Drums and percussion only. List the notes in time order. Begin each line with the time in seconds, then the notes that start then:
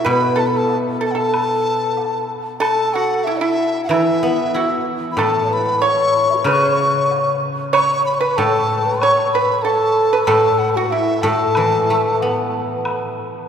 0.06 high woodblock
0.69 low woodblock
1.34 high woodblock
1.97 low woodblock
2.62 high woodblock
3.27 low woodblock
3.91 high woodblock
4.56 low woodblock
5.19 high woodblock
5.82 low woodblock
6.46 high woodblock
7.10 low woodblock
7.74 high woodblock
8.38 low woodblock
9.02 high woodblock
9.65 low woodblock
10.28 high woodblock
10.92 low woodblock
11.55 high woodblock
12.21 low woodblock
12.85 high woodblock